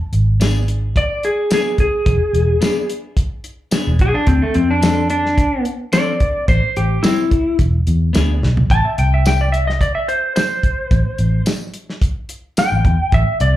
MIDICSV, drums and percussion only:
0, 0, Header, 1, 2, 480
1, 0, Start_track
1, 0, Tempo, 552995
1, 1789, Time_signature, 4, 2, 24, 8
1, 11775, End_track
2, 0, Start_track
2, 0, Title_t, "Drums"
2, 110, Note_on_c, 9, 42, 59
2, 197, Note_off_c, 9, 42, 0
2, 354, Note_on_c, 9, 42, 78
2, 354, Note_on_c, 9, 54, 104
2, 363, Note_on_c, 9, 38, 99
2, 441, Note_off_c, 9, 42, 0
2, 441, Note_off_c, 9, 54, 0
2, 450, Note_off_c, 9, 38, 0
2, 592, Note_on_c, 9, 42, 59
2, 679, Note_off_c, 9, 42, 0
2, 831, Note_on_c, 9, 36, 82
2, 833, Note_on_c, 9, 42, 74
2, 918, Note_off_c, 9, 36, 0
2, 920, Note_off_c, 9, 42, 0
2, 1071, Note_on_c, 9, 42, 61
2, 1157, Note_off_c, 9, 42, 0
2, 1307, Note_on_c, 9, 42, 82
2, 1307, Note_on_c, 9, 54, 112
2, 1316, Note_on_c, 9, 38, 110
2, 1394, Note_off_c, 9, 42, 0
2, 1394, Note_off_c, 9, 54, 0
2, 1403, Note_off_c, 9, 38, 0
2, 1547, Note_on_c, 9, 42, 56
2, 1548, Note_on_c, 9, 36, 80
2, 1634, Note_off_c, 9, 42, 0
2, 1635, Note_off_c, 9, 36, 0
2, 1790, Note_on_c, 9, 36, 102
2, 1790, Note_on_c, 9, 42, 81
2, 1876, Note_off_c, 9, 42, 0
2, 1877, Note_off_c, 9, 36, 0
2, 2035, Note_on_c, 9, 42, 62
2, 2122, Note_off_c, 9, 42, 0
2, 2271, Note_on_c, 9, 42, 82
2, 2271, Note_on_c, 9, 54, 102
2, 2279, Note_on_c, 9, 38, 111
2, 2358, Note_off_c, 9, 42, 0
2, 2358, Note_off_c, 9, 54, 0
2, 2366, Note_off_c, 9, 38, 0
2, 2513, Note_on_c, 9, 42, 65
2, 2600, Note_off_c, 9, 42, 0
2, 2748, Note_on_c, 9, 36, 79
2, 2749, Note_on_c, 9, 42, 87
2, 2835, Note_off_c, 9, 36, 0
2, 2835, Note_off_c, 9, 42, 0
2, 2986, Note_on_c, 9, 42, 60
2, 3073, Note_off_c, 9, 42, 0
2, 3223, Note_on_c, 9, 42, 85
2, 3223, Note_on_c, 9, 54, 116
2, 3232, Note_on_c, 9, 38, 112
2, 3310, Note_off_c, 9, 42, 0
2, 3310, Note_off_c, 9, 54, 0
2, 3319, Note_off_c, 9, 38, 0
2, 3466, Note_on_c, 9, 36, 78
2, 3466, Note_on_c, 9, 42, 61
2, 3552, Note_off_c, 9, 42, 0
2, 3553, Note_off_c, 9, 36, 0
2, 3703, Note_on_c, 9, 42, 84
2, 3707, Note_on_c, 9, 36, 109
2, 3790, Note_off_c, 9, 42, 0
2, 3794, Note_off_c, 9, 36, 0
2, 3943, Note_on_c, 9, 42, 62
2, 4030, Note_off_c, 9, 42, 0
2, 4188, Note_on_c, 9, 42, 79
2, 4188, Note_on_c, 9, 54, 110
2, 4197, Note_on_c, 9, 38, 110
2, 4275, Note_off_c, 9, 42, 0
2, 4275, Note_off_c, 9, 54, 0
2, 4283, Note_off_c, 9, 38, 0
2, 4423, Note_on_c, 9, 42, 65
2, 4510, Note_off_c, 9, 42, 0
2, 4563, Note_on_c, 9, 38, 32
2, 4650, Note_off_c, 9, 38, 0
2, 4667, Note_on_c, 9, 36, 84
2, 4668, Note_on_c, 9, 42, 86
2, 4753, Note_off_c, 9, 36, 0
2, 4755, Note_off_c, 9, 42, 0
2, 4906, Note_on_c, 9, 42, 60
2, 4993, Note_off_c, 9, 42, 0
2, 5144, Note_on_c, 9, 42, 80
2, 5144, Note_on_c, 9, 54, 107
2, 5152, Note_on_c, 9, 38, 114
2, 5230, Note_off_c, 9, 42, 0
2, 5230, Note_off_c, 9, 54, 0
2, 5239, Note_off_c, 9, 38, 0
2, 5384, Note_on_c, 9, 42, 55
2, 5386, Note_on_c, 9, 36, 82
2, 5471, Note_off_c, 9, 42, 0
2, 5473, Note_off_c, 9, 36, 0
2, 5626, Note_on_c, 9, 36, 106
2, 5626, Note_on_c, 9, 42, 79
2, 5713, Note_off_c, 9, 36, 0
2, 5713, Note_off_c, 9, 42, 0
2, 5871, Note_on_c, 9, 42, 61
2, 5958, Note_off_c, 9, 42, 0
2, 6108, Note_on_c, 9, 42, 84
2, 6108, Note_on_c, 9, 54, 101
2, 6117, Note_on_c, 9, 38, 107
2, 6195, Note_off_c, 9, 42, 0
2, 6195, Note_off_c, 9, 54, 0
2, 6203, Note_off_c, 9, 38, 0
2, 6349, Note_on_c, 9, 36, 85
2, 6349, Note_on_c, 9, 42, 68
2, 6435, Note_off_c, 9, 36, 0
2, 6436, Note_off_c, 9, 42, 0
2, 6587, Note_on_c, 9, 42, 85
2, 6588, Note_on_c, 9, 36, 88
2, 6674, Note_off_c, 9, 42, 0
2, 6675, Note_off_c, 9, 36, 0
2, 6830, Note_on_c, 9, 42, 64
2, 6917, Note_off_c, 9, 42, 0
2, 7070, Note_on_c, 9, 42, 87
2, 7070, Note_on_c, 9, 54, 110
2, 7079, Note_on_c, 9, 38, 106
2, 7157, Note_off_c, 9, 42, 0
2, 7157, Note_off_c, 9, 54, 0
2, 7166, Note_off_c, 9, 38, 0
2, 7320, Note_on_c, 9, 38, 59
2, 7406, Note_off_c, 9, 38, 0
2, 7441, Note_on_c, 9, 43, 95
2, 7528, Note_off_c, 9, 43, 0
2, 7552, Note_on_c, 9, 36, 106
2, 7553, Note_on_c, 9, 42, 79
2, 7639, Note_off_c, 9, 36, 0
2, 7639, Note_off_c, 9, 42, 0
2, 7795, Note_on_c, 9, 42, 64
2, 7882, Note_off_c, 9, 42, 0
2, 8034, Note_on_c, 9, 42, 80
2, 8034, Note_on_c, 9, 54, 109
2, 8043, Note_on_c, 9, 38, 97
2, 8121, Note_off_c, 9, 42, 0
2, 8121, Note_off_c, 9, 54, 0
2, 8130, Note_off_c, 9, 38, 0
2, 8278, Note_on_c, 9, 42, 62
2, 8365, Note_off_c, 9, 42, 0
2, 8415, Note_on_c, 9, 38, 33
2, 8502, Note_off_c, 9, 38, 0
2, 8512, Note_on_c, 9, 36, 82
2, 8517, Note_on_c, 9, 42, 83
2, 8599, Note_off_c, 9, 36, 0
2, 8604, Note_off_c, 9, 42, 0
2, 8755, Note_on_c, 9, 42, 59
2, 8842, Note_off_c, 9, 42, 0
2, 8994, Note_on_c, 9, 42, 79
2, 8994, Note_on_c, 9, 54, 102
2, 9003, Note_on_c, 9, 38, 105
2, 9081, Note_off_c, 9, 42, 0
2, 9081, Note_off_c, 9, 54, 0
2, 9090, Note_off_c, 9, 38, 0
2, 9230, Note_on_c, 9, 36, 79
2, 9232, Note_on_c, 9, 42, 52
2, 9317, Note_off_c, 9, 36, 0
2, 9318, Note_off_c, 9, 42, 0
2, 9470, Note_on_c, 9, 36, 111
2, 9470, Note_on_c, 9, 42, 77
2, 9557, Note_off_c, 9, 36, 0
2, 9557, Note_off_c, 9, 42, 0
2, 9708, Note_on_c, 9, 42, 60
2, 9795, Note_off_c, 9, 42, 0
2, 9947, Note_on_c, 9, 42, 76
2, 9947, Note_on_c, 9, 54, 110
2, 9956, Note_on_c, 9, 38, 105
2, 10034, Note_off_c, 9, 42, 0
2, 10034, Note_off_c, 9, 54, 0
2, 10043, Note_off_c, 9, 38, 0
2, 10187, Note_on_c, 9, 42, 64
2, 10274, Note_off_c, 9, 42, 0
2, 10325, Note_on_c, 9, 38, 31
2, 10412, Note_off_c, 9, 38, 0
2, 10429, Note_on_c, 9, 36, 88
2, 10431, Note_on_c, 9, 42, 80
2, 10516, Note_off_c, 9, 36, 0
2, 10518, Note_off_c, 9, 42, 0
2, 10667, Note_on_c, 9, 42, 63
2, 10754, Note_off_c, 9, 42, 0
2, 10911, Note_on_c, 9, 42, 82
2, 10911, Note_on_c, 9, 54, 108
2, 10919, Note_on_c, 9, 38, 107
2, 10998, Note_off_c, 9, 42, 0
2, 10998, Note_off_c, 9, 54, 0
2, 11006, Note_off_c, 9, 38, 0
2, 11152, Note_on_c, 9, 36, 81
2, 11152, Note_on_c, 9, 42, 62
2, 11238, Note_off_c, 9, 36, 0
2, 11238, Note_off_c, 9, 42, 0
2, 11391, Note_on_c, 9, 42, 85
2, 11392, Note_on_c, 9, 36, 106
2, 11478, Note_off_c, 9, 42, 0
2, 11479, Note_off_c, 9, 36, 0
2, 11632, Note_on_c, 9, 42, 65
2, 11719, Note_off_c, 9, 42, 0
2, 11775, End_track
0, 0, End_of_file